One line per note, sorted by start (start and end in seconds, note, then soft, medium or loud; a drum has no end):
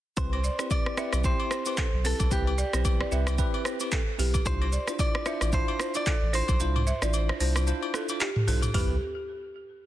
0.17 0.49 C2 loud
0.17 0.38 C4 medium
0.17 0.38 E4 medium
0.17 0.38 G4 medium
0.17 0.38 B4 loud
0.17 0.71 C5 loud
0.17 kick loud
0.17 shaker medium
0.33 0.44 C5 medium
0.33 high agogo medium
0.44 0.52 D5 medium
0.44 shaker medium
0.59 0.95 C4 medium
0.59 0.95 E4 medium
0.59 0.95 G4 medium
0.59 0.95 B4 medium
0.59 cross-stick loud
0.59 shaker medium
0.71 1.25 D5 loud
0.71 kick loud
0.71 high agogo medium
0.71 shaker medium
0.86 cross-stick medium
0.97 1.22 C4 medium
0.97 1.22 E4 medium
0.97 1.22 G4 medium
0.97 1.23 B4 medium
0.97 1.06 E5 medium
0.97 cross-stick loud
0.97 shaker soft
1.13 1.33 B1 medium
1.13 cross-stick medium
1.13 high agogo medium
1.13 shaker medium
1.24 1.63 C4 loud
1.24 1.63 E4 medium
1.24 1.63 G4 medium
1.24 1.63 C5 loud
1.24 2.08 C5 loud
1.24 kick loud
1.24 shaker medium
1.40 high agogo medium
1.51 1.59 C5 medium
1.51 cross-stick loud
1.51 shaker medium
1.66 1.85 C4 medium
1.66 1.85 E4 medium
1.66 1.86 G4 medium
1.66 1.86 B4 medium
1.66 high agogo medium
1.66 shaker medium
1.77 1.86 A4 medium
1.77 kick medium
1.77 clap loud
1.77 shaker medium
1.93 2.14 B1 medium
2.04 2.26 C4 medium
2.04 2.26 E4 medium
2.04 2.26 G4 medium
2.04 2.32 A4 medium
2.04 2.13 B4 medium
2.04 2.26 B4 medium
2.04 open hi-hat medium
2.04 shaker soft
2.20 2.29 B1 medium
2.20 kick medium
2.20 high agogo medium
2.20 shaker medium
2.31 2.63 C2 loud
2.31 2.52 C4 medium
2.31 2.52 E4 medium
2.31 2.52 G4 medium
2.31 3.35 G4 medium
2.31 2.53 B4 loud
2.31 kick loud
2.31 shaker medium
2.47 high agogo medium
2.58 2.66 D5 medium
2.58 shaker medium
2.73 3.02 B1 loud
2.73 3.09 C4 medium
2.73 3.09 E4 medium
2.73 3.09 G4 medium
2.73 3.09 B4 medium
2.73 2.80 C5 medium
2.73 cross-stick medium
2.73 shaker medium
2.85 kick loud
2.85 high agogo medium
2.85 shaker medium
3.01 3.12 D5 medium
3.01 cross-stick medium
3.11 3.44 C2 medium
3.11 3.37 C4 medium
3.11 3.37 E4 medium
3.11 3.37 G4 medium
3.11 3.37 B4 medium
3.11 3.20 E5 medium
3.11 shaker soft
3.27 cross-stick loud
3.27 high agogo medium
3.27 shaker medium
3.38 3.77 C4 medium
3.38 3.77 E4 medium
3.38 3.77 G4 medium
3.38 3.77 B4 loud
3.38 kick loud
3.38 shaker medium
3.54 high agogo medium
3.65 3.74 C5 medium
3.65 cross-stick loud
3.65 shaker medium
3.80 4.00 C4 medium
3.80 4.00 E4 medium
3.80 4.00 G4 medium
3.80 4.00 B4 medium
3.80 high agogo medium
3.80 shaker medium
3.92 4.00 A4 medium
3.92 kick medium
3.92 clap loud
3.92 shaker medium
4.18 4.39 B1 loud
4.18 4.40 C4 medium
4.18 4.40 E4 medium
4.18 4.40 G4 medium
4.18 4.27 G4 medium
4.18 4.40 B4 medium
4.18 open hi-hat medium
4.18 shaker medium
4.34 kick medium
4.34 high agogo medium
4.34 shaker medium
4.45 4.78 C2 loud
4.45 4.67 D4 medium
4.45 4.67 E4 medium
4.45 4.67 F4 medium
4.45 4.67 C5 loud
4.45 5.00 C5 loud
4.45 kick loud
4.45 shaker medium
4.61 4.73 C5 medium
4.61 high agogo medium
4.73 4.81 D5 medium
4.73 shaker medium
4.88 5.23 D4 medium
4.88 5.23 E4 medium
4.88 5.23 F4 medium
4.88 5.23 C5 medium
4.88 cross-stick medium
4.88 shaker medium
4.99 5.54 D5 loud
4.99 kick loud
4.99 high agogo medium
4.99 shaker medium
5.15 cross-stick loud
5.26 5.51 D4 medium
5.26 5.51 E4 medium
5.26 5.51 F4 medium
5.26 5.51 C5 medium
5.26 5.34 E5 medium
5.26 cross-stick loud
5.26 shaker soft
5.41 5.62 A1 medium
5.41 cross-stick medium
5.41 high agogo medium
5.41 shaker medium
5.53 5.91 D4 loud
5.53 5.91 E4 medium
5.53 5.92 F4 medium
5.53 5.92 C5 loud
5.53 5.96 C5 loud
5.53 kick loud
5.53 shaker medium
5.68 high agogo medium
5.80 5.88 C5 medium
5.80 cross-stick loud
5.80 shaker medium
5.94 6.14 D4 medium
5.94 6.14 E4 medium
5.94 6.14 F4 medium
5.94 6.14 C5 medium
5.94 6.35 D5 loud
5.94 high agogo medium
5.94 shaker medium
6.06 6.15 A4 medium
6.06 kick medium
6.06 clap loud
6.06 shaker medium
6.22 6.42 A1 medium
6.33 6.54 D4 medium
6.33 6.54 E4 medium
6.33 6.54 F4 medium
6.33 6.41 C5 medium
6.33 6.55 C5 medium
6.33 7.37 C5 medium
6.33 open hi-hat medium
6.33 shaker medium
6.48 6.57 B1 medium
6.48 kick medium
6.48 high agogo medium
6.48 shaker medium
6.60 6.92 C2 loud
6.60 6.81 D4 medium
6.60 6.81 E4 medium
6.60 6.81 F4 medium
6.60 6.81 C5 loud
6.60 shaker medium
6.76 mid tom medium
6.76 high agogo medium
6.87 6.95 E5 medium
6.87 shaker medium
7.02 7.31 A1 medium
7.02 7.38 D4 medium
7.02 7.38 E4 medium
7.02 7.38 F4 medium
7.02 7.38 C5 medium
7.02 7.08 D5 medium
7.02 cross-stick medium
7.02 shaker medium
7.14 high agogo medium
7.14 shaker medium
7.29 7.35 C5 medium
7.29 cross-stick medium
7.40 7.72 C2 loud
7.40 7.65 D4 medium
7.40 7.65 E4 medium
7.40 7.66 F4 medium
7.40 7.48 C5 medium
7.40 7.66 C5 medium
7.40 open hi-hat medium
7.40 shaker soft
7.56 cross-stick loud
7.56 high agogo medium
7.56 shaker medium
7.67 8.06 D4 medium
7.67 8.06 E4 medium
7.67 8.06 F4 medium
7.67 8.06 C5 loud
7.67 shaker medium
7.83 high agogo medium
7.94 8.02 A4 medium
7.94 cross-stick medium
7.94 shaker medium
8.09 8.28 D4 medium
8.09 8.28 E4 medium
8.09 8.29 F4 medium
8.09 8.29 C5 medium
8.09 high agogo medium
8.09 shaker medium
8.20 8.29 G4 medium
8.20 clap loud
8.20 shaker medium
8.36 mid tom loud
8.47 8.68 B1 loud
8.47 8.69 D4 medium
8.47 8.69 E4 medium
8.47 8.69 F4 medium
8.47 8.56 A4 medium
8.47 8.69 C5 medium
8.47 open hi-hat medium
8.47 shaker medium
8.62 mid tom medium
8.62 high agogo medium
8.62 shaker medium
8.74 8.99 C2 loud
8.74 8.95 C4 medium
8.74 8.95 E4 medium
8.74 8.99 G4 medium
8.74 8.95 G4 medium
8.74 8.95 B4 loud
8.74 kick loud
8.74 floor tom loud
8.74 open hi-hat medium
8.74 high agogo medium